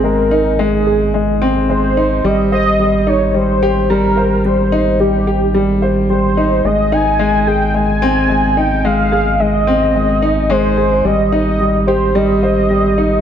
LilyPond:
<<
  \new Staff \with { instrumentName = "Soft synth lead" } { \time 4/4 \key aes \major \tempo 4 = 109 bes'4 aes'4. r8 c''4 | ees''8 ees''4 des''16. des''32 c''4 bes'4 | c''4 g'4. r8 c''4 | ees''8 aes''4 g''8 aes''4. g''8 |
f''4 ees''2 c''4 | ees''8 ees''4 c''8 ees''2 | }
  \new Staff \with { instrumentName = "Upright piano" } { \time 4/4 \key aes \major aes8 ees'8 aes8 aes'8 aes8 c'8 aes8 ees'8 | g8 c''8 g8 ees'8 g8 g'8 g8 c''8 | g8 ees'8 g8 g'8 g8 c''8 g8 ees'8 | aes8 ees'8 aes8 aes'8 aes8 c'8 aes8 ees'8 |
aes8 aes'8 aes8 c'8 aes8 ees'8 aes8 aes'8 | g8 ees'8 g8 g'8 g8 c''8 g8 ees'8 | }
  \new Staff \with { instrumentName = "Analog synth bass" } { \clef bass \time 4/4 \key aes \major aes,,1 | aes,,1~ | aes,,1 | aes,,1~ |
aes,,1 | aes,,1 | }
>>